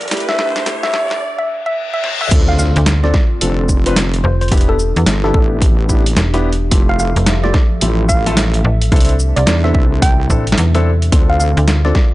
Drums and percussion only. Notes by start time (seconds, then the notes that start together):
0.01 closed hi-hat
0.08 snare, closed hi-hat
0.11 closed hi-hat
0.17 closed hi-hat
0.20 closed hi-hat
0.29 snare
0.39 snare
0.56 snare, closed hi-hat
0.66 snare, closed hi-hat
0.83 snare
0.94 snare
1.11 snare
2.04 snare
2.21 mid tom
2.31 kick, closed hi-hat, crash
2.59 shaker
2.76 closed hi-hat
2.86 snare, closed hi-hat
3.04 snare
3.14 kick, snare
3.41 closed hi-hat
3.69 kick, shaker
3.86 closed hi-hat
3.96 snare, closed hi-hat
4.14 closed hi-hat
4.41 closed hi-hat
4.48 closed hi-hat
4.52 kick, closed hi-hat
4.57 closed hi-hat
4.61 closed hi-hat
4.79 shaker
4.96 closed hi-hat
5.06 snare, closed hi-hat
5.24 snare
5.34 kick
5.62 kick, closed hi-hat
5.89 kick, shaker
6.06 closed hi-hat
6.17 snare, closed hi-hat
6.34 snare, closed hi-hat
6.53 closed hi-hat
6.71 kick, closed hi-hat
6.99 shaker
7.16 closed hi-hat
7.26 snare, closed hi-hat
7.44 snare
7.54 kick, snare
7.81 closed hi-hat
8.09 kick, shaker
8.26 closed hi-hat
8.37 snare, closed hi-hat
8.54 closed hi-hat
8.82 closed hi-hat
8.92 kick, closed hi-hat
8.96 closed hi-hat
9.01 closed hi-hat
9.05 closed hi-hat
9.09 closed hi-hat
9.19 shaker
9.37 closed hi-hat
9.47 snare, closed hi-hat
9.64 snare
9.75 kick
10.02 kick, closed hi-hat
10.30 kick, shaker
10.47 closed hi-hat
10.52 snare
10.58 closed hi-hat
10.75 snare, closed hi-hat
11.02 closed hi-hat
11.12 kick, closed hi-hat
11.40 shaker
11.57 closed hi-hat
11.68 snare, closed hi-hat
11.85 snare
11.95 kick, snare